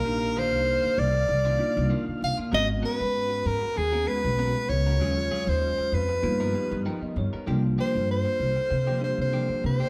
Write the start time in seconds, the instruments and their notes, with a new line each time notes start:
Already playing: string section D#3 A#3 F5, soprano saxophone A#4
0.04 upright bass A#1, tine electric piano A#3 D4 D#4 G4
0.23 muted clean electric guitar stroke
0.36 clean electric guitar D#3 A#3 D4 F4, soprano saxophone C5
0.53 upright bass C2, muted clean electric guitar stroke
0.84 muted upright bass stroke, muted clean electric guitar stroke
0.98 upright bass C2, soprano saxophone D5
1.14 muted clean electric guitar stroke
1.28 upright bass C2, muted clean electric guitar stroke
1.45 clean electric guitar D#3 A#3 D4 F4
1.58 tine electric piano A#3 D4 D#4 F4, muted clean electric guitar stroke
1.77 upright bass C2
1.90 clean electric guitar D#3 A#3 D4 F4
2.07 muted clean electric guitar stroke, muted upright bass stroke
2.21 upright bass C2, soprano saxophone F5, muted clean electric guitar stroke
2.38 clean electric guitar A#3 D4 F4, muted upright bass stroke
2.51 upright bass G#1, string section C#3 F#4, tine electric piano G#3 B3 C#4 F#4, clean electric guitar B3 C#4 F#4 A#4, soprano saxophone D#5
2.68 muted clean electric guitar stroke
2.82 clean electric guitar B3 C#4 F#4 A#4, soprano saxophone B4
2.99 upright bass G#2, muted clean electric guitar stroke
3.30 muted clean electric guitar stroke
3.46 upright bass G#2, soprano saxophone A#4
3.61 muted clean electric guitar stroke
3.76 upright bass D#2, soprano saxophone G#4, muted clean electric guitar stroke
3.92 clean electric guitar B3 C#4 F#4 A#4
4.07 tine electric piano G#3 B3 C#4 F#4, soprano saxophone B4, muted clean electric guitar stroke
4.25 upright bass B1
4.38 clean electric guitar B3 C#4 F#4 A#4
4.56 muted clean electric guitar stroke
4.69 upright bass C#2, soprano saxophone C#5, muted clean electric guitar stroke
4.86 clean electric guitar C#4 F#4 A#4
4.99 upright bass D#2, string section D#3 G#3 F4, tine electric piano F#3 G#3 C#4 F4, clean electric guitar F#3 C#4 F4 G#4
5.16 muted clean electric guitar stroke
5.31 clean electric guitar F#3 C#4 F4 G#4
5.47 upright bass D#2, soprano saxophone C5, muted clean electric guitar stroke
5.78 muted clean electric guitar stroke, muted upright bass stroke
5.92 upright bass F2, soprano saxophone B4
6.09 muted clean electric guitar stroke
6.22 upright bass G2, string section D#3 G3, tine electric piano A#3 B3 D#4 F4, muted clean electric guitar stroke
6.40 clean electric guitar F3 B3 D#4 A#4
6.53 tine electric piano G3 B3 D#4 G4, muted clean electric guitar stroke
6.71 upright bass G2
6.86 clean electric guitar F3 B3 D#4 A#4, tine electric piano G5
7.01 tine electric piano D#5, muted upright bass stroke, muted clean electric guitar stroke
7.16 upright bass G2, tine electric piano C#5, muted clean electric guitar stroke
7.33 clean electric guitar B3 D#4 A#4, muted upright bass stroke
7.46 upright bass C2, string section D3 A#3 C4 F4, clean electric guitar F3 A#3 D4 G4, tine electric piano G3 A#3 D4 F4
7.64 muted clean electric guitar stroke
7.78 clean electric guitar F3 A#3 D4 G4, soprano saxophone C5
7.94 upright bass G2, muted clean electric guitar stroke
8.11 soprano saxophone C5
8.25 muted clean electric guitar stroke
8.40 upright bass C2
8.56 muted clean electric guitar stroke
8.70 upright bass C3, muted clean electric guitar stroke
8.87 clean electric guitar F3 A#3 D4 G4
9.00 tine electric piano G3 A#3 D4 G4, soprano saxophone C5, muted clean electric guitar stroke
9.18 upright bass C3, soprano saxophone C5
9.33 clean electric guitar F3 A#3 D4 G4
9.49 muted upright bass stroke, muted clean electric guitar stroke
9.63 upright bass C3, soprano saxophone C5, muted clean electric guitar stroke
9.80 clean electric guitar A#3 D4 G4, muted upright bass stroke